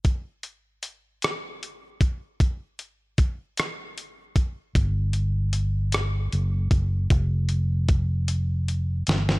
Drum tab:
HH |x-x-x-x-x-x-|x-x-x-x-x-x-|x-x-x-x-x-x-|x-x-x-x-x-x-|
SD |------r-----|------r-----|------r-----|----------oo|
BD |o---------o-|o---o-----o-|o---------o-|o---o-------|